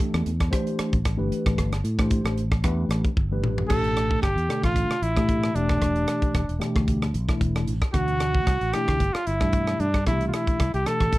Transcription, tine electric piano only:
0.00 0.29 E3 medium
0.00 0.29 A3 medium
0.00 0.30 D4 medium
0.00 0.30 G4 medium
0.00 0.30 A4 medium
0.50 0.95 E3 medium
0.50 0.96 A3 medium
0.50 0.96 D4 medium
0.50 0.96 G4 medium
0.50 0.96 C5 medium
1.17 1.70 E3 medium
1.17 1.70 A3 medium
1.17 1.70 D4 medium
1.17 1.71 G4 medium
1.17 1.71 B4 medium
1.98 2.41 E3 medium
1.98 2.41 A3 medium
1.98 2.41 D4 medium
1.98 2.42 G4 medium
1.98 2.42 C5 medium
2.63 3.08 E3 medium
2.63 3.08 A3 medium
2.63 3.08 D4 medium
2.63 3.08 G4 medium
2.63 3.08 B4 medium
3.31 3.68 E3 medium
3.31 3.68 A3 medium
3.31 3.69 D4 medium
3.31 3.69 G4 medium
3.31 3.70 B4 medium
3.68 4.21 B2 medium
3.68 4.22 E3 medium
3.68 4.22 A3 medium
3.68 4.22 D4 medium
3.68 4.22 G4 medium
4.48 4.92 B2 medium
4.48 4.93 D3 medium
4.48 4.93 A3 medium
4.48 4.93 D4 medium
4.48 4.93 A4 medium
5.15 5.53 B2 medium
5.15 5.53 E3 medium
5.15 5.53 A3 medium
5.15 5.53 D4 medium
5.15 5.55 G4 medium
5.54 6.40 B2 medium
5.54 6.40 E3 medium
5.54 6.40 A3 medium
5.54 6.40 D4 medium
5.54 6.41 G4 medium
6.59 7.04 B2 medium
6.59 7.04 E3 medium
6.59 7.04 A3 medium
6.59 7.05 D4 medium
6.59 7.05 G4 loud
7.27 7.71 B2 medium
7.27 7.71 E3 medium
7.27 7.71 A3 medium
7.27 7.71 D4 medium
7.27 7.72 E4 medium
7.93 8.46 B2 medium
7.93 8.46 E3 medium
7.93 8.46 A3 medium
7.93 8.46 D4 medium
7.93 8.46 F#4 medium
8.74 9.00 B2 medium
8.74 9.00 E3 medium
8.74 9.01 A3 medium
8.74 9.01 D4 medium
8.74 9.01 E4 medium
9.41 9.84 B2 medium
9.41 9.84 E3 medium
9.41 9.84 A3 medium
9.41 9.85 D4 medium
9.41 9.85 G4 medium
10.07 10.59 B2 medium
10.07 10.59 E3 medium
10.07 10.59 A3 medium
10.07 10.59 D4 medium
10.07 10.60 G4 medium
10.86 11.13 B2 medium
10.86 11.13 E3 medium
10.86 11.13 A3 medium
10.86 11.13 D4 medium
10.86 11.14 G4 medium

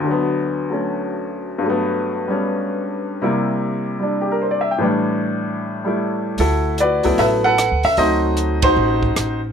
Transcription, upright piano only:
0.00 1.61 D2 soft
0.00 1.63 D3 soft
0.07 0.68 F#3 soft
0.11 1.66 B3 medium
0.70 1.61 F#3 soft
0.70 1.64 A3 soft
0.70 1.65 C#4 soft
1.58 3.19 G2 medium
1.58 3.21 F#3 soft
1.66 3.23 A3 soft
1.66 2.28 B3 medium
2.28 3.21 G3 soft
2.28 3.22 B3 soft
2.28 3.23 C#4 soft
3.22 4.80 C3 medium
3.22 3.98 G3 soft
3.22 4.81 A#3 soft
3.22 4.81 E4 medium
4.00 4.80 G3 soft
4.00 4.81 D4 soft
4.21 4.34 G4 soft
4.31 4.45 A#4 soft
4.42 4.59 C5 soft
4.51 4.67 D5 soft
4.61 4.73 E5 soft
4.71 4.85 G5 soft
4.78 6.38 A2 medium
4.78 6.39 E3 soft
4.78 5.83 G3 soft
4.83 6.40 D4 medium
5.85 6.39 G3 soft
5.85 6.39 A3 soft
5.85 6.38 E4 soft
6.40 7.04 E4 medium
6.40 6.80 F#4 medium
6.40 6.80 A4 medium
6.80 7.56 F#4 medium
6.80 7.19 B4 medium
6.80 7.20 D5 medium
7.04 7.55 F#3 medium
7.04 7.55 A3 soft
7.04 7.56 B3 medium
7.04 7.56 E4 medium
7.19 7.44 A4 medium
7.19 7.44 B4 medium
7.19 7.25 E5 medium
7.44 7.95 A4 medium
7.44 7.95 B4 medium
7.44 7.85 F#5 loud
7.85 7.97 E5 medium
7.97 9.08 F#3 soft
7.97 9.08 A3 soft
7.97 9.08 C4 soft
7.97 8.63 D#4 soft
7.97 8.63 F#4 medium
7.97 8.62 C5 medium
7.97 8.65 D#5 medium
8.63 9.39 D#4 medium
8.63 9.39 F#4 medium
8.63 9.38 C5 medium

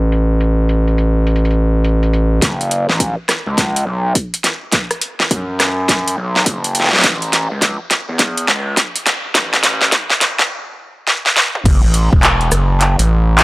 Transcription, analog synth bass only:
0.00 2.40 A1 loud
2.42 2.87 F#1 loud
2.89 3.15 A1 loud
3.47 3.85 C#2 medium
3.86 4.14 B1 loud
5.31 6.16 F#2 loud
6.17 6.45 B1 loud
6.46 6.91 F#1 loud
6.93 7.02 B1 loud
7.04 7.48 A1 loud
7.51 7.77 C#2 loud
8.09 8.47 E2 medium
8.48 8.75 C#2 loud
9.35 9.91 A1 loud
11.65 11.81 F#1 loud
11.84 12.10 A1 loud
12.13 12.50 E1 loud
12.52 12.96 F#1 medium
12.99 13.44 A1 medium

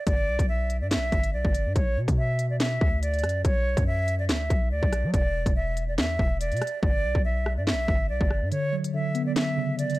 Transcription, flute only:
0.07 0.46 D5 loud
0.49 0.79 E5 medium
0.81 0.89 D5 medium
0.91 1.31 E5 medium
1.33 1.73 D5 medium
1.76 1.99 C#5 loud
2.18 2.48 E5 medium
2.50 2.58 D5 medium
2.60 3.00 E5 medium
3.02 3.42 D5 medium
3.45 3.84 C#5 loud
3.87 4.17 E5 medium
4.19 4.27 D5 medium
4.29 4.69 E5 medium
4.71 5.11 D5 medium
5.14 5.53 D5 loud
5.56 5.86 E5 medium
5.88 5.96 D5 medium
5.98 6.38 E5 medium
6.40 6.80 D5 medium
6.83 7.22 D5 loud
7.25 7.55 E5 medium
7.57 7.65 D5 medium
7.67 8.07 E5 loud
8.09 8.49 D5 medium
8.52 8.75 C#5 loud
8.94 9.24 E5 medium
9.26 9.34 D5 medium
9.36 9.76 E5 loud
9.78 9.99 D5 medium

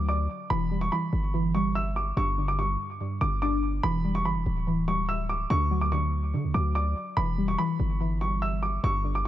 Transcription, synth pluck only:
0.00 0.50 D3 medium
0.00 0.50 F#3 medium
0.09 0.50 D5 medium
0.50 0.92 E3 loud
0.71 1.54 G3 medium
0.93 1.33 E3 medium
1.34 2.17 E3 medium
1.55 2.17 G3 medium
1.75 2.17 E5 loud
2.17 2.58 G2 loud
2.38 3.21 D3 medium
2.59 2.99 G2 medium
3.01 3.84 G2 loud
3.22 3.84 D3 medium
3.42 3.84 D4 loud
3.84 4.24 E3 loud
4.05 4.87 G3 medium
4.25 4.66 E3 medium
4.67 5.50 E3 medium
4.88 5.50 G3 medium
5.09 5.50 E5 loud
5.50 5.91 D3 loud
5.71 6.53 F#3 medium
5.92 6.32 D3 medium
6.34 7.17 D3 medium
6.54 7.17 F#3 medium
6.75 7.17 D5 medium
7.17 7.58 E3 medium
7.38 8.20 G3 medium
7.59 7.99 E3 medium
8.01 8.84 E3 medium
8.21 8.84 G3 medium
8.42 8.84 E5 loud
8.84 9.24 G2 loud
9.04 9.28 D3 medium

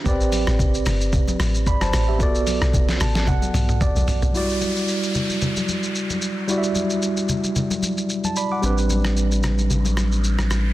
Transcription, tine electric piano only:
0.04 0.12 B3 medium
0.04 1.63 G4 medium
0.04 1.64 B4 medium
0.08 2.19 C4 medium
0.08 1.65 D5 medium
1.67 1.81 D5 medium
1.67 1.81 B5 medium
1.82 2.07 C5 medium
1.82 2.07 A5 medium
2.08 2.34 G4 medium
2.08 2.34 E5 medium
2.19 4.30 B3 medium
2.19 4.30 F#4 medium
2.19 4.31 A4 medium
2.23 3.80 D5 medium
3.01 3.26 A5 medium
3.28 3.78 F#5 medium
3.82 4.31 D5 medium
4.33 4.41 F#3 medium
4.33 6.45 E4 medium
4.33 6.45 F#4 medium
4.37 6.46 G3 medium
4.37 6.46 D5 medium
6.47 8.06 G3 medium
6.47 8.06 E4 medium
6.47 8.07 F#4 medium
6.52 6.57 D5 medium
6.58 7.85 E5 medium
8.25 8.36 A5 medium
8.37 8.51 D5 medium
8.37 8.51 B5 medium
8.52 8.77 F#5 medium
8.52 8.77 D6 medium
8.62 10.73 G3 medium
8.62 10.73 C4 medium
8.62 10.73 D4 medium
8.66 10.73 B4 medium

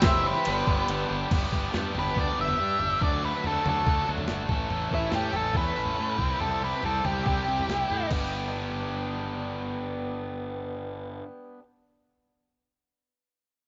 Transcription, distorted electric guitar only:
0.01 0.44 E3 loud
0.01 0.45 C4 loud
0.01 0.45 E4 loud
0.01 0.46 G4 loud
0.45 0.88 B3 medium
0.45 0.69 D4 loud
0.45 0.66 G4 loud
0.68 0.89 D4 medium
0.68 0.90 G4 medium
0.89 1.30 B3 medium
0.89 1.12 D4 medium
0.89 1.09 G4 medium
1.10 1.32 D4 medium
1.10 1.30 G4 medium
1.31 1.71 B3 medium
1.31 1.54 D4 medium
1.31 1.52 G4 medium
1.52 1.74 D4 medium
1.52 1.75 G4 medium
1.72 2.13 B3 medium
1.72 1.96 D4 medium
1.72 1.93 G4 medium
1.93 2.15 D4 medium
1.93 2.17 G4 medium
2.14 2.58 B3 medium
2.14 2.36 D4 medium
2.14 2.34 G4 medium
2.34 2.81 D4 medium
2.34 2.79 G4 medium
2.79 3.00 D4 medium
2.79 3.02 G4 medium
3.00 3.41 F#3 medium
3.00 3.22 A3 medium
3.00 3.21 D4 medium
3.00 3.19 F#4 medium
3.21 3.44 A3 medium
3.21 3.44 D4 medium
3.21 3.45 F#4 medium
3.42 3.85 F#3 medium
3.42 3.66 A3 medium
3.42 3.65 D4 medium
3.42 3.63 F#4 medium
3.64 3.86 A3 soft
3.64 3.87 D4 medium
3.64 3.87 F#4 medium
3.86 4.28 F#3 medium
3.86 4.09 A3 medium
3.86 4.08 D4 medium
3.86 4.07 F#4 medium
4.08 4.50 A3 soft
4.08 4.50 D4 medium
4.08 4.49 F#4 medium
4.50 4.70 E3 medium
4.50 4.69 A3 medium
4.50 4.71 C#4 medium
4.50 4.72 A4 medium
4.70 5.11 E3 medium
4.70 4.92 A3 medium
4.70 4.91 C#4 medium
4.70 4.90 A4 medium
4.91 5.12 A3 medium
4.91 5.12 C#4 medium
4.91 5.13 A4 medium
5.12 5.53 E3 medium
5.12 5.35 A3 medium
5.12 5.34 C#4 medium
5.12 5.33 A4 medium
5.34 5.54 A3 soft
5.34 5.55 C#4 medium
5.34 5.56 A4 medium
5.54 5.97 E3 medium
5.54 5.77 A3 medium
5.54 5.76 C#4 medium
5.54 5.75 A4 medium
5.76 6.19 A3 medium
5.76 6.18 C#4 medium
5.76 6.17 A4 medium
6.18 6.37 C4 medium
6.18 6.39 E4 medium
6.18 6.40 G4 medium
6.38 6.81 C4 medium
6.38 6.62 E4 medium
6.38 6.60 G4 medium
6.61 6.82 E4 soft
6.61 6.83 G4 medium
6.82 7.25 C4 medium
6.82 7.05 E4 medium
6.82 7.02 G4 medium
7.04 7.26 E4 soft
7.04 7.27 G4 medium
7.26 7.69 C4 medium
7.26 7.48 E4 medium
7.26 7.46 G4 medium
7.47 7.90 E4 soft
7.47 7.87 G4 medium
7.88 8.11 E4 medium
7.88 8.09 G4 medium
8.10 11.60 B3 medium
8.10 11.62 D4 medium
8.10 11.63 G4 medium

